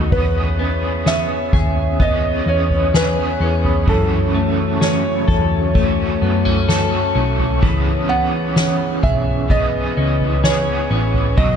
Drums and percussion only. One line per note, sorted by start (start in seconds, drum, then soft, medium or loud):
0.12 kick medium
0.12 floor tom loud
1.06 snare loud
1.53 kick medium
1.53 floor tom medium
2.00 kick medium
2.00 floor tom medium
2.70 floor tom medium
2.94 snare loud
3.64 floor tom medium
3.87 kick loud
3.87 floor tom loud
4.81 snare loud
5.28 kick medium
5.28 floor tom medium
5.75 kick medium
5.75 floor tom medium
6.46 floor tom medium
6.69 snare loud
7.39 floor tom medium
7.63 kick medium
7.63 floor tom loud
8.56 snare loud
9.03 kick medium
9.03 floor tom medium
9.50 kick medium
9.50 floor tom medium
10.21 floor tom medium
10.44 snare loud
11.14 floor tom medium
11.38 kick medium
11.38 floor tom loud